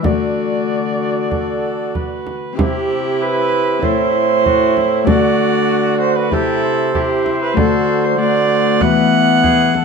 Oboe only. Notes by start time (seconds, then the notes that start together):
0.05 D5
2.58 E4
4.45 F#4
4.78 E4
5.07 F#4
6.32 G4
6.64 C5
8.81 B4
9.43 G#4
9.76 A4